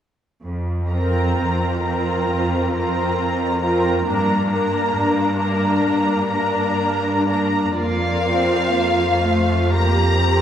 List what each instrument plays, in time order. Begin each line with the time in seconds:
0.44 cello section F2
0.91 viola section C4 F4, violin section A#4 A#5
1.38 cello section F2
1.81 viola section C4 F4, violin section A#4 A#5
2.28 cello section F2
2.72 viola section C4 F4, violin section A#4 A#5
3.19 cello section F2
3.62 viola section C4 F4, violin section A#4 A#5
4.06 cello section G2, viola section A#3 D4, violin section A#4 A#5
4.49 viola section A#3 D4, violin section A#4 A#5
4.94 cello section G2
5.38 viola section A#3 D4, violin section A#4 A#5
5.84 cello section G2
6.30 viola section A#3 D4, violin section A#4 A#5
6.80 cello section G2
7.28 viola section A#3 D4, violin section A#4 A#5
7.78 cello section F2, viola section A#3 F4, violin section A#4 D5 F5
8.26 viola section C4
8.73 viola section A#3, violin section C5
9.22 viola section A3
9.72 viola section A#3 G4, violin section A#4 A#5
10.22 viola section C4